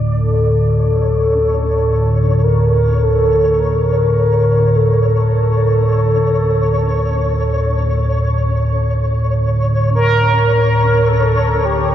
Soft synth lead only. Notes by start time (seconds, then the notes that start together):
0.13 A4
2.44 A#4
3.04 A4
3.60 A#4
4.76 A4
9.95 A#4
11.08 A4
11.65 G4